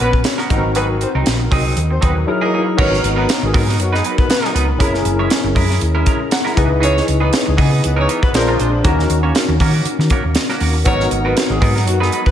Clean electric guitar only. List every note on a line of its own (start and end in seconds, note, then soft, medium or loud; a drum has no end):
0.00 0.15 B3 medium
0.00 0.13 C#4 medium
0.00 0.12 F#4 medium
0.00 0.12 B4 medium
0.13 muted clean electric guitar stroke soft
0.24 muted clean electric guitar stroke medium
0.38 0.49 B3 medium
0.38 0.50 C#4 medium
0.38 0.50 F#4 medium
0.38 0.50 A#4 medium
0.49 0.65 F#3 medium
0.49 0.64 C4 medium
0.49 0.64 D#4 medium
0.49 0.64 A#4 medium
0.64 muted clean electric guitar stroke soft
0.76 0.94 F#3 medium
0.76 0.89 C4 medium
0.76 0.88 D#4 medium
0.76 0.88 G#4 medium
0.89 muted clean electric guitar stroke soft
1.01 muted clean electric guitar stroke soft
1.15 1.25 F#3 medium
1.15 1.26 C4 medium
1.15 1.26 D#4 medium
1.15 1.27 A#4 medium
1.26 muted clean electric guitar stroke soft
1.40 muted clean electric guitar stroke soft
1.51 1.64 F#3 medium
1.51 1.64 C4 medium
1.51 1.64 D#4 medium
1.51 1.63 G#4 loud
1.64 1.79 F#3 medium
1.64 1.79 C4 medium
1.64 1.78 D#4 medium
1.64 1.78 G#4 medium
1.91 muted clean electric guitar stroke soft
2.01 2.20 F#3 medium
2.01 2.16 C4 medium
2.01 2.15 D#4 medium
2.01 2.15 G#4 medium
2.16 muted clean electric guitar stroke medium
2.28 muted clean electric guitar stroke soft
2.41 2.52 E3 medium
2.41 2.53 A#3 medium
2.41 2.53 D#4 medium
2.41 2.53 G#4 medium
2.53 2.68 E3 medium
2.53 2.67 A#3 medium
2.53 2.66 D#4 medium
2.53 2.65 G#4 medium
2.67 muted clean electric guitar stroke soft
2.77 2.96 F#3 medium
2.77 2.91 B3 medium
2.77 2.91 D#4 medium
2.77 2.90 A#4 medium
2.92 muted clean electric guitar stroke soft
3.03 muted clean electric guitar stroke soft
3.16 3.28 F#3 soft
3.16 3.28 B3 medium
3.16 3.28 D#4 medium
3.16 3.28 A#4 medium
3.29 muted clean electric guitar stroke soft
3.42 muted clean electric guitar stroke medium
3.54 3.68 F#3 medium
3.54 3.68 B3 medium
3.54 3.67 D#4 medium
3.54 3.67 A#4 loud
3.68 3.78 F#3 medium
3.68 3.79 B3 medium
3.68 3.79 D#4 medium
3.68 3.79 A#4 medium
3.79 muted clean electric guitar stroke soft
3.92 4.03 F#3 medium
3.92 4.03 B3 medium
3.92 4.04 D#4 medium
3.92 4.04 B4 medium
4.04 4.19 F#3 medium
4.04 4.18 B3 medium
4.04 4.17 D#4 medium
4.04 4.18 B4 medium
4.18 muted clean electric guitar stroke medium
4.30 muted clean electric guitar stroke soft
4.42 4.53 F#3 medium
4.42 4.53 B3 medium
4.42 4.54 D#4 medium
4.42 4.55 A#4 medium
4.54 4.69 F#3 medium
4.54 4.68 B3 medium
4.54 4.67 D#4 medium
4.54 4.68 B4 medium
4.68 muted clean electric guitar stroke soft
4.80 4.99 G#3 medium
4.80 4.94 C#4 medium
4.80 4.93 E4 medium
4.80 4.92 A#4 medium
4.94 muted clean electric guitar stroke soft
5.05 muted clean electric guitar stroke soft
5.19 5.29 G#3 medium
5.19 5.30 C#4 medium
5.19 5.30 E4 medium
5.19 5.31 C#5 medium
5.30 muted clean electric guitar stroke soft
5.44 muted clean electric guitar stroke soft
5.55 5.70 G#3 medium
5.55 5.69 C#4 medium
5.55 5.69 E4 medium
5.55 5.68 A#4 medium
5.69 5.80 G#3 medium
5.69 5.80 C#4 medium
5.69 5.80 E4 medium
5.69 5.81 A#4 medium
5.81 muted clean electric guitar stroke soft
5.95 6.05 G#3 medium
5.95 6.06 C#4 medium
5.95 6.06 E4 medium
5.95 6.07 A#4 medium
6.06 6.21 G#3 medium
6.06 6.21 C#4 medium
6.06 6.20 E4 medium
6.06 6.19 A#4 medium
6.21 muted clean electric guitar stroke medium
6.32 muted clean electric guitar stroke soft
6.45 6.56 G#3 medium
6.45 6.56 C#4 medium
6.45 6.57 E4 medium
6.45 6.58 A#4 medium
6.56 6.72 E3 medium
6.56 6.69 B3 medium
6.56 6.69 D#4 medium
6.56 6.68 G#4 medium
6.70 muted clean electric guitar stroke soft
6.80 7.00 E3 medium
6.80 6.94 B3 medium
6.80 6.94 D#4 medium
6.80 6.93 G#4 medium
6.95 muted clean electric guitar stroke soft
7.06 muted clean electric guitar stroke soft
7.20 7.31 E3 medium
7.20 7.31 B3 medium
7.20 7.32 D#4 medium
7.20 7.32 G#4 medium
7.32 muted clean electric guitar stroke soft
7.46 muted clean electric guitar stroke medium
7.57 7.71 E3 medium
7.57 7.71 B3 medium
7.57 7.71 D#4 medium
7.57 7.70 G#4 medium
7.71 7.81 E3 medium
7.71 7.82 B3 medium
7.71 7.82 D#4 medium
7.71 7.83 G#4 medium
7.83 muted clean electric guitar stroke soft
7.96 8.07 E3 medium
7.96 8.08 B3 medium
7.96 8.08 D#4 medium
7.96 8.08 A#4 medium
8.08 8.23 E3 medium
8.08 8.22 B3 medium
8.08 8.22 D#4 medium
8.08 8.22 A#4 medium
8.22 muted clean electric guitar stroke medium
8.34 muted clean electric guitar stroke soft
8.47 8.58 G#3 medium
8.47 8.59 D4 medium
8.47 8.59 F4 medium
8.47 8.60 A#4 medium
8.59 8.74 G#3 medium
8.59 8.73 D4 medium
8.59 8.72 F4 medium
8.59 8.72 C5 medium
8.73 muted clean electric guitar stroke soft
8.84 9.03 A#3 medium
8.84 8.98 C#4 medium
8.84 8.98 F#4 loud
8.84 8.97 A#4 medium
8.99 muted clean electric guitar stroke soft
9.10 muted clean electric guitar stroke soft
9.23 9.34 A#3 medium
9.23 9.34 C#4 medium
9.23 9.35 F#4 medium
9.23 9.35 C#5 medium
9.35 muted clean electric guitar stroke soft
9.49 muted clean electric guitar stroke soft
9.61 9.73 A#3 medium
9.61 9.73 C#4 medium
9.61 9.73 F#4 medium
9.61 9.72 A#4 medium
9.73 9.87 A#3 medium
9.73 9.87 C#4 medium
9.73 9.87 F#4 medium
9.73 9.87 A#4 medium
10.00 muted clean electric guitar stroke soft
10.11 10.29 A#3 medium
10.11 10.24 C#4 medium
10.11 10.24 F#4 medium
10.11 10.23 A#4 medium
10.24 muted clean electric guitar stroke soft
10.36 muted clean electric guitar stroke soft
10.50 10.60 A#3 medium
10.50 10.60 C#4 medium
10.50 10.61 F#4 medium
10.50 10.61 A#4 medium
10.61 10.76 A#3 medium
10.61 10.74 C#4 medium
10.61 10.74 F#4 medium
10.61 10.73 A#4 medium
10.74 muted clean electric guitar stroke medium
10.86 11.05 F#3 medium
10.86 11.00 B3 medium
10.86 11.00 D#4 medium
10.86 10.99 A#4 medium
11.00 muted clean electric guitar stroke medium
11.12 muted clean electric guitar stroke soft
11.25 11.36 F#3 medium
11.25 11.36 B3 medium
11.25 11.36 D#4 medium
11.25 11.37 A#4 medium
11.37 muted clean electric guitar stroke soft
11.50 muted clean electric guitar stroke medium
11.61 11.75 F#3 medium
11.61 11.75 B3 medium
11.61 11.74 D#4 medium
11.61 11.74 A#4 medium
11.75 11.86 F#3 soft
11.75 11.86 B3 medium
11.75 11.86 D#4 medium
11.75 11.86 A#4 medium
12.00 12.11 F#3 medium
12.00 12.12 B3 medium
12.00 12.12 D#4 medium
12.00 12.13 B4 loud
12.12 12.27 F#3 medium
12.12 12.26 B3 medium
12.12 12.26 D#4 medium
12.12 12.26 B4 medium
12.26 muted clean electric guitar stroke medium